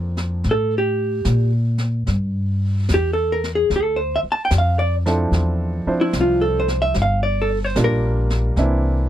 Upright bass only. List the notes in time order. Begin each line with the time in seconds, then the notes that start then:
Already playing: F2
0.45 A2
1.25 A#2
2.08 G2
2.90 E2
3.70 D2
4.23 muted upright bass stroke
4.51 F2
5.31 E2
5.86 muted upright bass stroke
6.13 C2
6.95 G1
7.76 A#1
8.56 C2